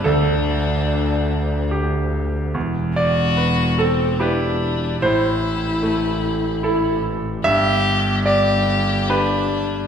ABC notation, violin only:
X:1
M:3/4
L:1/8
Q:1/4=73
K:Em
V:1 name="Violin"
D4 z2 | z F2 C D2 | E4- E z | G2 G2 D2 |]